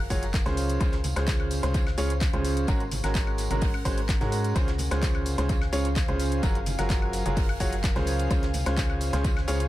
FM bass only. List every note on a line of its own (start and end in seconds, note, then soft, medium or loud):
0.10 0.44 F#1 loud
0.46 0.78 C#2 loud
0.81 1.14 C#2 loud
1.16 1.61 C#2 medium
1.63 1.96 C#2 loud
1.98 2.31 C#2 loud
2.33 2.66 C#2 loud
2.68 3.01 G#1 loud
3.04 3.48 G#1 medium
3.51 3.83 G#1 loud
3.85 4.19 G#1 medium
4.21 4.53 G#2 loud
4.56 4.89 C#2 medium
4.91 5.36 C#2 medium
5.38 5.71 C#2 loud
5.73 6.06 C#2 loud
6.09 6.41 C#2 loud
6.43 6.76 F#1 medium
6.79 7.23 F#1 medium
7.26 7.58 F#1 loud
7.60 7.94 F#1 loud
7.96 8.28 C#2 loud
8.31 8.64 C#2 medium
8.66 9.11 C#2 loud
9.13 9.46 C#2 loud
9.48 9.68 C#2 loud